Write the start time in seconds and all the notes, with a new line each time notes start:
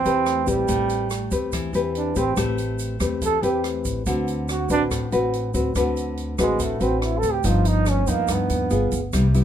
Already playing: E3 C4
0.05 E2 C4 G4 B4, closed hi-hat, shaker
0.26 cross-stick, closed hi-hat, shaker
0.46 A1 G3 C4 G4 B4, kick, closed hi-hat, shaker
0.68 A1 A3, kick, closed hi-hat, shaker
0.89 closed hi-hat, shaker
1.10 cross-stick, closed hi-hat, shaker
1.31 E2 C4 G4 B4, kick, closed hi-hat, shaker
1.52 E3, kick, cross-stick, closed hi-hat, shaker
1.73 E2 C4 G4 B4, closed hi-hat, shaker
1.95 D4, closed hi-hat
2.16 A1 C4 G4 B4, kick, closed hi-hat, shaker
2.37 A1 A3 C4 G4 B4, kick, cross-stick, closed hi-hat, shaker
2.58 closed hi-hat, shaker
2.79 closed hi-hat, shaker
3.00 E2 C4 G4 B4, kick, cross-stick, closed hi-hat, shaker
3.22 E3 A4, kick, closed hi-hat, shaker
3.43 E2 C4 G4 B4, closed hi-hat, shaker
3.64 cross-stick, closed hi-hat
3.85 A1, kick, closed hi-hat, shaker
4.06 D2 D3 C4 F#4 B4, kick, closed hi-hat, shaker
4.28 closed hi-hat, shaker
4.48 F#4, cross-stick, closed hi-hat, shaker
4.69 A1 C4 D4 F#4 B4, kick, closed hi-hat, shaker
4.91 A2, kick, cross-stick, closed hi-hat, shaker
5.12 A1 C4 F#4 B4, closed hi-hat, shaker
5.34 closed hi-hat
5.54 D2 C4 F#4 B4, kick, closed hi-hat, shaker
5.75 D2 D3 C4 F#4 B4, kick, cross-stick, closed hi-hat, shaker
5.96 closed hi-hat, shaker
6.17 closed hi-hat
6.38 A1 G#3 C4 F#4 B4, kick, cross-stick, closed hi-hat, shaker
6.59 A2 A3, kick, closed hi-hat, shaker
6.80 A1 C4 F#4 B4, closed hi-hat, shaker
7.02 E4, cross-stick, closed hi-hat
7.18 A4
7.23 D2, kick, closed hi-hat, shaker
7.33 G4
7.43 G1 G2 F3 B3 D#4 F4, kick, closed hi-hat, shaker
7.65 D#4, closed hi-hat, shaker
7.86 cross-stick, closed hi-hat, shaker
7.90 C#4
8.07 D#2 F3 A#3 B3 D#4, kick, closed hi-hat, shaker
8.28 G2, kick, cross-stick, closed hi-hat, shaker
8.32 B3
8.50 D#2, closed hi-hat, shaker
8.70 G1 B3 F4 G#4, closed hi-hat, shaker
8.92 G1, kick, closed hi-hat, shaker
9.13 C2 C3 G3 B3 E4, kick, cross-stick, closed hi-hat, shaker
9.34 G3 B3 E4, closed hi-hat, shaker